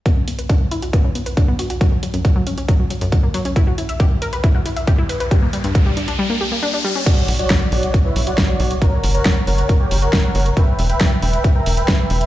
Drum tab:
CC |----------------|----------------|----------------|----------------|
HH |x-xxx-xxx-xxx-xx|x-xxx-xxx-xxx-xx|x-xxx-xxx-xxx-xx|x-xxx-xx--------|
SD |----------------|----------------|----------------|----------------|
BD |o---o---o---o---|o---o---o---o---|o---o---o---o---|o---o-----------|

CC |x---------------|----------------|----------------|
HH |x-oxx-oxx-oxx-ox|x-oxx-oxx-oxx-ox|x-oxx-oxx-oxx-ox|
SD |----o-------o---|----o-------o---|----o-------o---|
BD |o---o---o---o---|o---o---o---o---|o---o---o---o---|